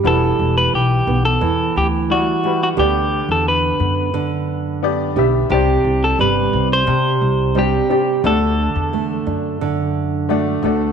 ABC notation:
X:1
M:4/4
L:1/16
Q:1/4=88
K:Em
V:1 name="Clean electric guitar"
A3 B G3 A3 G2 F3 F | G3 A B8- B2 z2 | G3 A B3 c4- c G4 | A12 z4 |]
V:2 name="Upright piano"
[G,EFB]6 z6 [G,EFd]2 [G,EFB]2 | [B,DGd]6 z6 [B,DGd]2 [B,DGe]2 | [CDGd]6 z6 [CDGd]2 [CDGd]2 | [A,DFd]6 z6 [A,DFd]2 [A,DFd]2 |]
V:3 name="Nylon-string guitar"
E,6 B,2 E,6 G2 | [D,G]6 B,2 D,6 G2 | [C,G]4 G,2 C2 C,4 G,2 G2 | [D,A]4 A,2 D2 D,4 A,2 A2 |]
V:4 name="Upright bass" clef=bass
E,,,2 E,,,2 B,,,2 B,,,2 E,,2 D,,4 z2 | D,,3 E,,3 F,,8 B,,,2 | C,,2 C,,2 G,,,2 C,,2 C,2 C,,4 z2 | D,,3 E,,3 F,,8 D,,2 |]